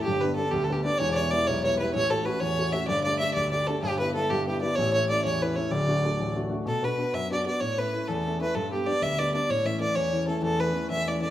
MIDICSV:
0, 0, Header, 1, 3, 480
1, 0, Start_track
1, 0, Tempo, 314301
1, 82, Time_signature, 6, 3, 24, 8
1, 17260, End_track
2, 0, Start_track
2, 0, Title_t, "Fiddle"
2, 0, Program_c, 0, 110
2, 45, Note_on_c, 0, 67, 99
2, 315, Note_on_c, 0, 71, 95
2, 338, Note_off_c, 0, 67, 0
2, 539, Note_off_c, 0, 71, 0
2, 548, Note_on_c, 0, 69, 91
2, 779, Note_on_c, 0, 67, 91
2, 802, Note_off_c, 0, 69, 0
2, 978, Note_on_c, 0, 69, 88
2, 1000, Note_off_c, 0, 67, 0
2, 1112, Note_on_c, 0, 67, 80
2, 1135, Note_off_c, 0, 69, 0
2, 1276, Note_off_c, 0, 67, 0
2, 1285, Note_on_c, 0, 74, 90
2, 1502, Note_on_c, 0, 73, 110
2, 1525, Note_off_c, 0, 74, 0
2, 1701, Note_off_c, 0, 73, 0
2, 1710, Note_on_c, 0, 74, 75
2, 1761, Note_on_c, 0, 73, 97
2, 1783, Note_off_c, 0, 74, 0
2, 1997, Note_on_c, 0, 74, 105
2, 2020, Note_off_c, 0, 73, 0
2, 2247, Note_on_c, 0, 73, 94
2, 2270, Note_off_c, 0, 74, 0
2, 2491, Note_off_c, 0, 73, 0
2, 2500, Note_on_c, 0, 73, 100
2, 2718, Note_off_c, 0, 73, 0
2, 2733, Note_on_c, 0, 71, 82
2, 2949, Note_off_c, 0, 71, 0
2, 2960, Note_on_c, 0, 73, 114
2, 3212, Note_on_c, 0, 69, 98
2, 3235, Note_off_c, 0, 73, 0
2, 3443, Note_on_c, 0, 71, 92
2, 3466, Note_off_c, 0, 69, 0
2, 3669, Note_on_c, 0, 73, 109
2, 3692, Note_off_c, 0, 71, 0
2, 4155, Note_on_c, 0, 76, 94
2, 4178, Note_off_c, 0, 73, 0
2, 4386, Note_off_c, 0, 76, 0
2, 4395, Note_on_c, 0, 74, 100
2, 4629, Note_off_c, 0, 74, 0
2, 4638, Note_on_c, 0, 74, 104
2, 4863, Note_off_c, 0, 74, 0
2, 4872, Note_on_c, 0, 76, 103
2, 5092, Note_off_c, 0, 76, 0
2, 5101, Note_on_c, 0, 74, 94
2, 5356, Note_off_c, 0, 74, 0
2, 5365, Note_on_c, 0, 74, 88
2, 5605, Note_on_c, 0, 69, 81
2, 5628, Note_off_c, 0, 74, 0
2, 5831, Note_off_c, 0, 69, 0
2, 5840, Note_on_c, 0, 67, 101
2, 6087, Note_off_c, 0, 67, 0
2, 6094, Note_on_c, 0, 71, 85
2, 6315, Note_off_c, 0, 71, 0
2, 6333, Note_on_c, 0, 69, 87
2, 6573, Note_on_c, 0, 67, 91
2, 6596, Note_off_c, 0, 69, 0
2, 6820, Note_off_c, 0, 67, 0
2, 6830, Note_on_c, 0, 67, 87
2, 7039, Note_off_c, 0, 67, 0
2, 7048, Note_on_c, 0, 74, 92
2, 7259, Note_on_c, 0, 73, 116
2, 7282, Note_off_c, 0, 74, 0
2, 7522, Note_off_c, 0, 73, 0
2, 7531, Note_on_c, 0, 73, 94
2, 7754, Note_off_c, 0, 73, 0
2, 7780, Note_on_c, 0, 74, 93
2, 7994, Note_off_c, 0, 74, 0
2, 8013, Note_on_c, 0, 73, 98
2, 8282, Note_on_c, 0, 71, 84
2, 8305, Note_off_c, 0, 73, 0
2, 8488, Note_on_c, 0, 73, 77
2, 8511, Note_off_c, 0, 71, 0
2, 8727, Note_on_c, 0, 74, 87
2, 8749, Note_off_c, 0, 73, 0
2, 9708, Note_off_c, 0, 74, 0
2, 10189, Note_on_c, 0, 69, 101
2, 10448, Note_on_c, 0, 71, 89
2, 10471, Note_off_c, 0, 69, 0
2, 10907, Note_on_c, 0, 76, 92
2, 10930, Note_off_c, 0, 71, 0
2, 11158, Note_off_c, 0, 76, 0
2, 11176, Note_on_c, 0, 74, 88
2, 11377, Note_off_c, 0, 74, 0
2, 11395, Note_on_c, 0, 74, 92
2, 11616, Note_on_c, 0, 73, 96
2, 11639, Note_off_c, 0, 74, 0
2, 11888, Note_on_c, 0, 71, 90
2, 11911, Note_off_c, 0, 73, 0
2, 12340, Note_on_c, 0, 69, 90
2, 12363, Note_off_c, 0, 71, 0
2, 12824, Note_off_c, 0, 69, 0
2, 12854, Note_on_c, 0, 71, 88
2, 13064, Note_on_c, 0, 69, 96
2, 13087, Note_off_c, 0, 71, 0
2, 13313, Note_off_c, 0, 69, 0
2, 13322, Note_on_c, 0, 67, 84
2, 13542, Note_on_c, 0, 74, 100
2, 13565, Note_off_c, 0, 67, 0
2, 13779, Note_on_c, 0, 76, 104
2, 13802, Note_off_c, 0, 74, 0
2, 14034, Note_on_c, 0, 74, 105
2, 14057, Note_off_c, 0, 76, 0
2, 14261, Note_off_c, 0, 74, 0
2, 14269, Note_on_c, 0, 74, 90
2, 14511, Note_on_c, 0, 73, 104
2, 14533, Note_off_c, 0, 74, 0
2, 14750, Note_on_c, 0, 76, 94
2, 14773, Note_off_c, 0, 73, 0
2, 14965, Note_off_c, 0, 76, 0
2, 14974, Note_on_c, 0, 74, 98
2, 15206, Note_on_c, 0, 73, 92
2, 15229, Note_off_c, 0, 74, 0
2, 15684, Note_off_c, 0, 73, 0
2, 15693, Note_on_c, 0, 69, 78
2, 15908, Note_off_c, 0, 69, 0
2, 15928, Note_on_c, 0, 69, 98
2, 16189, Note_on_c, 0, 71, 88
2, 16212, Note_off_c, 0, 69, 0
2, 16641, Note_off_c, 0, 71, 0
2, 16650, Note_on_c, 0, 76, 97
2, 16917, Note_on_c, 0, 74, 85
2, 16940, Note_off_c, 0, 76, 0
2, 17124, Note_off_c, 0, 74, 0
2, 17133, Note_on_c, 0, 74, 87
2, 17260, Note_off_c, 0, 74, 0
2, 17260, End_track
3, 0, Start_track
3, 0, Title_t, "Grand piano"
3, 0, Program_c, 1, 0
3, 100, Note_on_c, 1, 43, 65
3, 107, Note_on_c, 1, 31, 64
3, 345, Note_on_c, 1, 55, 47
3, 348, Note_on_c, 1, 59, 45
3, 359, Note_on_c, 1, 62, 56
3, 563, Note_off_c, 1, 55, 0
3, 565, Note_off_c, 1, 59, 0
3, 568, Note_off_c, 1, 43, 0
3, 573, Note_off_c, 1, 62, 0
3, 586, Note_on_c, 1, 55, 55
3, 588, Note_on_c, 1, 59, 46
3, 595, Note_on_c, 1, 62, 51
3, 806, Note_on_c, 1, 38, 75
3, 974, Note_off_c, 1, 55, 0
3, 975, Note_off_c, 1, 59, 0
3, 980, Note_off_c, 1, 62, 0
3, 1060, Note_on_c, 1, 55, 44
3, 1069, Note_on_c, 1, 59, 48
3, 1070, Note_on_c, 1, 62, 46
3, 1261, Note_off_c, 1, 55, 0
3, 1272, Note_off_c, 1, 59, 0
3, 1277, Note_off_c, 1, 62, 0
3, 1282, Note_off_c, 1, 38, 0
3, 1284, Note_on_c, 1, 55, 45
3, 1295, Note_on_c, 1, 59, 43
3, 1300, Note_on_c, 1, 62, 65
3, 1473, Note_off_c, 1, 55, 0
3, 1477, Note_off_c, 1, 31, 0
3, 1480, Note_off_c, 1, 59, 0
3, 1482, Note_off_c, 1, 62, 0
3, 1525, Note_on_c, 1, 40, 74
3, 1529, Note_on_c, 1, 28, 57
3, 1784, Note_on_c, 1, 55, 41
3, 1796, Note_on_c, 1, 59, 42
3, 1803, Note_on_c, 1, 64, 51
3, 1994, Note_off_c, 1, 55, 0
3, 2002, Note_off_c, 1, 40, 0
3, 2004, Note_off_c, 1, 59, 0
3, 2008, Note_off_c, 1, 64, 0
3, 2017, Note_on_c, 1, 55, 51
3, 2027, Note_on_c, 1, 59, 49
3, 2031, Note_on_c, 1, 64, 59
3, 2253, Note_on_c, 1, 35, 70
3, 2409, Note_off_c, 1, 55, 0
3, 2416, Note_off_c, 1, 59, 0
3, 2418, Note_off_c, 1, 64, 0
3, 2508, Note_on_c, 1, 55, 50
3, 2512, Note_on_c, 1, 59, 45
3, 2517, Note_on_c, 1, 64, 54
3, 2717, Note_off_c, 1, 59, 0
3, 2719, Note_off_c, 1, 55, 0
3, 2726, Note_off_c, 1, 35, 0
3, 2727, Note_off_c, 1, 64, 0
3, 2740, Note_on_c, 1, 59, 46
3, 2742, Note_on_c, 1, 55, 51
3, 2749, Note_on_c, 1, 64, 61
3, 2909, Note_off_c, 1, 28, 0
3, 2923, Note_off_c, 1, 59, 0
3, 2924, Note_off_c, 1, 55, 0
3, 2929, Note_off_c, 1, 64, 0
3, 2958, Note_on_c, 1, 33, 63
3, 2959, Note_on_c, 1, 45, 68
3, 3210, Note_on_c, 1, 57, 44
3, 3211, Note_on_c, 1, 61, 41
3, 3218, Note_on_c, 1, 66, 47
3, 3420, Note_off_c, 1, 57, 0
3, 3424, Note_off_c, 1, 61, 0
3, 3428, Note_off_c, 1, 66, 0
3, 3439, Note_off_c, 1, 45, 0
3, 3443, Note_on_c, 1, 57, 43
3, 3447, Note_on_c, 1, 61, 44
3, 3451, Note_on_c, 1, 66, 61
3, 3685, Note_on_c, 1, 40, 64
3, 3842, Note_off_c, 1, 57, 0
3, 3844, Note_off_c, 1, 61, 0
3, 3846, Note_off_c, 1, 66, 0
3, 3930, Note_on_c, 1, 57, 46
3, 3940, Note_on_c, 1, 61, 40
3, 3946, Note_on_c, 1, 66, 45
3, 4142, Note_off_c, 1, 57, 0
3, 4149, Note_off_c, 1, 61, 0
3, 4161, Note_off_c, 1, 66, 0
3, 4162, Note_off_c, 1, 40, 0
3, 4165, Note_on_c, 1, 57, 46
3, 4172, Note_on_c, 1, 61, 46
3, 4183, Note_on_c, 1, 66, 58
3, 4343, Note_off_c, 1, 33, 0
3, 4355, Note_off_c, 1, 57, 0
3, 4359, Note_off_c, 1, 61, 0
3, 4366, Note_off_c, 1, 66, 0
3, 4401, Note_on_c, 1, 43, 73
3, 4404, Note_on_c, 1, 31, 67
3, 4670, Note_on_c, 1, 62, 43
3, 4671, Note_on_c, 1, 57, 47
3, 4682, Note_on_c, 1, 67, 54
3, 4871, Note_off_c, 1, 57, 0
3, 4880, Note_off_c, 1, 62, 0
3, 4881, Note_off_c, 1, 43, 0
3, 4886, Note_off_c, 1, 67, 0
3, 4894, Note_on_c, 1, 57, 42
3, 4902, Note_on_c, 1, 62, 43
3, 4909, Note_on_c, 1, 67, 55
3, 5135, Note_on_c, 1, 38, 70
3, 5288, Note_off_c, 1, 57, 0
3, 5294, Note_off_c, 1, 62, 0
3, 5298, Note_off_c, 1, 67, 0
3, 5384, Note_on_c, 1, 62, 42
3, 5387, Note_on_c, 1, 57, 42
3, 5397, Note_on_c, 1, 67, 50
3, 5603, Note_off_c, 1, 57, 0
3, 5607, Note_off_c, 1, 62, 0
3, 5608, Note_off_c, 1, 38, 0
3, 5610, Note_off_c, 1, 67, 0
3, 5626, Note_on_c, 1, 57, 52
3, 5630, Note_on_c, 1, 62, 49
3, 5633, Note_on_c, 1, 67, 53
3, 5786, Note_off_c, 1, 31, 0
3, 5808, Note_off_c, 1, 57, 0
3, 5810, Note_off_c, 1, 62, 0
3, 5812, Note_off_c, 1, 67, 0
3, 5845, Note_on_c, 1, 31, 68
3, 5849, Note_on_c, 1, 43, 75
3, 6105, Note_on_c, 1, 55, 41
3, 6114, Note_on_c, 1, 59, 44
3, 6120, Note_on_c, 1, 64, 46
3, 6307, Note_off_c, 1, 55, 0
3, 6311, Note_off_c, 1, 59, 0
3, 6313, Note_off_c, 1, 64, 0
3, 6325, Note_off_c, 1, 43, 0
3, 6330, Note_on_c, 1, 55, 49
3, 6334, Note_on_c, 1, 59, 48
3, 6336, Note_on_c, 1, 64, 56
3, 6568, Note_on_c, 1, 43, 68
3, 6726, Note_off_c, 1, 55, 0
3, 6729, Note_off_c, 1, 59, 0
3, 6730, Note_off_c, 1, 64, 0
3, 6826, Note_on_c, 1, 59, 42
3, 6827, Note_on_c, 1, 55, 42
3, 6840, Note_on_c, 1, 64, 48
3, 7037, Note_off_c, 1, 55, 0
3, 7039, Note_off_c, 1, 59, 0
3, 7044, Note_off_c, 1, 43, 0
3, 7045, Note_off_c, 1, 64, 0
3, 7060, Note_on_c, 1, 55, 50
3, 7062, Note_on_c, 1, 59, 54
3, 7068, Note_on_c, 1, 64, 57
3, 7226, Note_off_c, 1, 31, 0
3, 7244, Note_off_c, 1, 55, 0
3, 7245, Note_off_c, 1, 59, 0
3, 7249, Note_off_c, 1, 64, 0
3, 7302, Note_on_c, 1, 33, 68
3, 7307, Note_on_c, 1, 45, 73
3, 7566, Note_on_c, 1, 57, 44
3, 7572, Note_on_c, 1, 61, 44
3, 7578, Note_on_c, 1, 64, 54
3, 7762, Note_off_c, 1, 57, 0
3, 7764, Note_off_c, 1, 61, 0
3, 7774, Note_off_c, 1, 45, 0
3, 7774, Note_off_c, 1, 64, 0
3, 7784, Note_on_c, 1, 57, 45
3, 7787, Note_on_c, 1, 61, 45
3, 7797, Note_on_c, 1, 64, 58
3, 8014, Note_on_c, 1, 40, 63
3, 8175, Note_off_c, 1, 57, 0
3, 8176, Note_off_c, 1, 61, 0
3, 8182, Note_off_c, 1, 64, 0
3, 8268, Note_on_c, 1, 57, 46
3, 8270, Note_on_c, 1, 61, 42
3, 8280, Note_on_c, 1, 64, 51
3, 8470, Note_off_c, 1, 57, 0
3, 8475, Note_off_c, 1, 61, 0
3, 8478, Note_off_c, 1, 64, 0
3, 8487, Note_off_c, 1, 40, 0
3, 8493, Note_on_c, 1, 57, 48
3, 8498, Note_on_c, 1, 61, 49
3, 8501, Note_on_c, 1, 64, 61
3, 8674, Note_off_c, 1, 33, 0
3, 8679, Note_off_c, 1, 57, 0
3, 8683, Note_off_c, 1, 61, 0
3, 8685, Note_off_c, 1, 64, 0
3, 8724, Note_on_c, 1, 38, 73
3, 8725, Note_on_c, 1, 26, 66
3, 8985, Note_on_c, 1, 57, 46
3, 8987, Note_on_c, 1, 62, 43
3, 8993, Note_on_c, 1, 66, 55
3, 9202, Note_off_c, 1, 38, 0
3, 9210, Note_off_c, 1, 57, 0
3, 9214, Note_off_c, 1, 62, 0
3, 9228, Note_off_c, 1, 66, 0
3, 9233, Note_on_c, 1, 57, 51
3, 9237, Note_on_c, 1, 62, 43
3, 9251, Note_on_c, 1, 66, 51
3, 9455, Note_on_c, 1, 33, 59
3, 9620, Note_off_c, 1, 57, 0
3, 9622, Note_off_c, 1, 62, 0
3, 9631, Note_off_c, 1, 66, 0
3, 9705, Note_on_c, 1, 57, 47
3, 9707, Note_on_c, 1, 62, 38
3, 9711, Note_on_c, 1, 66, 52
3, 9898, Note_off_c, 1, 57, 0
3, 9901, Note_off_c, 1, 62, 0
3, 9912, Note_off_c, 1, 66, 0
3, 9921, Note_on_c, 1, 57, 53
3, 9924, Note_on_c, 1, 62, 50
3, 9928, Note_off_c, 1, 33, 0
3, 9935, Note_on_c, 1, 66, 55
3, 10106, Note_off_c, 1, 26, 0
3, 10112, Note_off_c, 1, 57, 0
3, 10114, Note_off_c, 1, 62, 0
3, 10121, Note_off_c, 1, 66, 0
3, 10165, Note_on_c, 1, 47, 70
3, 10418, Note_on_c, 1, 59, 50
3, 10422, Note_on_c, 1, 62, 42
3, 10432, Note_on_c, 1, 66, 48
3, 10638, Note_off_c, 1, 59, 0
3, 10639, Note_off_c, 1, 62, 0
3, 10642, Note_off_c, 1, 47, 0
3, 10644, Note_off_c, 1, 66, 0
3, 10661, Note_on_c, 1, 59, 49
3, 10662, Note_on_c, 1, 62, 43
3, 10667, Note_on_c, 1, 66, 49
3, 10888, Note_on_c, 1, 42, 62
3, 11052, Note_off_c, 1, 59, 0
3, 11053, Note_off_c, 1, 62, 0
3, 11056, Note_off_c, 1, 66, 0
3, 11156, Note_on_c, 1, 59, 40
3, 11159, Note_on_c, 1, 62, 45
3, 11175, Note_on_c, 1, 66, 52
3, 11363, Note_off_c, 1, 59, 0
3, 11364, Note_off_c, 1, 42, 0
3, 11369, Note_off_c, 1, 62, 0
3, 11369, Note_off_c, 1, 66, 0
3, 11386, Note_on_c, 1, 59, 43
3, 11392, Note_on_c, 1, 62, 43
3, 11392, Note_on_c, 1, 66, 52
3, 11567, Note_off_c, 1, 59, 0
3, 11571, Note_off_c, 1, 62, 0
3, 11571, Note_off_c, 1, 66, 0
3, 11619, Note_on_c, 1, 45, 65
3, 11868, Note_on_c, 1, 57, 37
3, 11872, Note_on_c, 1, 61, 42
3, 11880, Note_on_c, 1, 64, 47
3, 12089, Note_off_c, 1, 45, 0
3, 12090, Note_off_c, 1, 57, 0
3, 12096, Note_off_c, 1, 61, 0
3, 12108, Note_off_c, 1, 64, 0
3, 12113, Note_on_c, 1, 57, 46
3, 12119, Note_on_c, 1, 61, 42
3, 12131, Note_on_c, 1, 64, 53
3, 12353, Note_on_c, 1, 40, 70
3, 12499, Note_off_c, 1, 57, 0
3, 12503, Note_off_c, 1, 61, 0
3, 12510, Note_off_c, 1, 64, 0
3, 12601, Note_on_c, 1, 57, 45
3, 12611, Note_on_c, 1, 61, 43
3, 12621, Note_on_c, 1, 64, 45
3, 12804, Note_off_c, 1, 57, 0
3, 12810, Note_off_c, 1, 61, 0
3, 12816, Note_off_c, 1, 40, 0
3, 12817, Note_off_c, 1, 64, 0
3, 12827, Note_on_c, 1, 57, 56
3, 12833, Note_on_c, 1, 61, 47
3, 12840, Note_on_c, 1, 64, 59
3, 13007, Note_off_c, 1, 57, 0
3, 13011, Note_off_c, 1, 61, 0
3, 13015, Note_off_c, 1, 64, 0
3, 13059, Note_on_c, 1, 43, 71
3, 13319, Note_on_c, 1, 55, 40
3, 13321, Note_on_c, 1, 59, 41
3, 13327, Note_on_c, 1, 62, 52
3, 13518, Note_off_c, 1, 55, 0
3, 13521, Note_off_c, 1, 59, 0
3, 13525, Note_off_c, 1, 62, 0
3, 13529, Note_off_c, 1, 43, 0
3, 13541, Note_on_c, 1, 55, 49
3, 13544, Note_on_c, 1, 59, 43
3, 13548, Note_on_c, 1, 62, 52
3, 13769, Note_on_c, 1, 38, 57
3, 13932, Note_off_c, 1, 55, 0
3, 13933, Note_off_c, 1, 59, 0
3, 13936, Note_off_c, 1, 62, 0
3, 14024, Note_on_c, 1, 55, 49
3, 14033, Note_on_c, 1, 59, 39
3, 14034, Note_on_c, 1, 62, 48
3, 14235, Note_off_c, 1, 55, 0
3, 14241, Note_off_c, 1, 59, 0
3, 14243, Note_off_c, 1, 38, 0
3, 14249, Note_off_c, 1, 62, 0
3, 14258, Note_on_c, 1, 55, 46
3, 14264, Note_on_c, 1, 59, 44
3, 14272, Note_on_c, 1, 62, 60
3, 14442, Note_off_c, 1, 55, 0
3, 14445, Note_off_c, 1, 59, 0
3, 14450, Note_off_c, 1, 62, 0
3, 14490, Note_on_c, 1, 45, 69
3, 14732, Note_on_c, 1, 52, 43
3, 14745, Note_on_c, 1, 57, 42
3, 14745, Note_on_c, 1, 61, 49
3, 14949, Note_off_c, 1, 52, 0
3, 14950, Note_off_c, 1, 57, 0
3, 14955, Note_off_c, 1, 61, 0
3, 14964, Note_off_c, 1, 45, 0
3, 14972, Note_on_c, 1, 52, 48
3, 14973, Note_on_c, 1, 57, 43
3, 14978, Note_on_c, 1, 61, 47
3, 15206, Note_on_c, 1, 40, 60
3, 15366, Note_off_c, 1, 52, 0
3, 15366, Note_off_c, 1, 57, 0
3, 15369, Note_off_c, 1, 61, 0
3, 15469, Note_on_c, 1, 57, 38
3, 15470, Note_on_c, 1, 52, 39
3, 15478, Note_on_c, 1, 61, 51
3, 15669, Note_off_c, 1, 57, 0
3, 15670, Note_off_c, 1, 52, 0
3, 15677, Note_off_c, 1, 61, 0
3, 15681, Note_off_c, 1, 40, 0
3, 15692, Note_on_c, 1, 57, 42
3, 15693, Note_on_c, 1, 52, 50
3, 15700, Note_on_c, 1, 61, 55
3, 15912, Note_on_c, 1, 40, 68
3, 16085, Note_off_c, 1, 57, 0
3, 16086, Note_off_c, 1, 52, 0
3, 16090, Note_off_c, 1, 61, 0
3, 16156, Note_on_c, 1, 52, 46
3, 16165, Note_on_c, 1, 57, 43
3, 16171, Note_on_c, 1, 61, 41
3, 16372, Note_off_c, 1, 52, 0
3, 16379, Note_off_c, 1, 57, 0
3, 16386, Note_off_c, 1, 61, 0
3, 16393, Note_off_c, 1, 40, 0
3, 16395, Note_on_c, 1, 52, 48
3, 16402, Note_on_c, 1, 57, 41
3, 16409, Note_on_c, 1, 61, 58
3, 16644, Note_on_c, 1, 40, 62
3, 16795, Note_off_c, 1, 52, 0
3, 16799, Note_off_c, 1, 57, 0
3, 16803, Note_off_c, 1, 61, 0
3, 16902, Note_on_c, 1, 52, 42
3, 16908, Note_on_c, 1, 57, 43
3, 16909, Note_on_c, 1, 61, 50
3, 17097, Note_off_c, 1, 52, 0
3, 17111, Note_off_c, 1, 57, 0
3, 17114, Note_off_c, 1, 61, 0
3, 17119, Note_off_c, 1, 40, 0
3, 17120, Note_on_c, 1, 52, 49
3, 17134, Note_on_c, 1, 57, 45
3, 17137, Note_on_c, 1, 61, 53
3, 17260, Note_off_c, 1, 52, 0
3, 17260, Note_off_c, 1, 57, 0
3, 17260, Note_off_c, 1, 61, 0
3, 17260, End_track
0, 0, End_of_file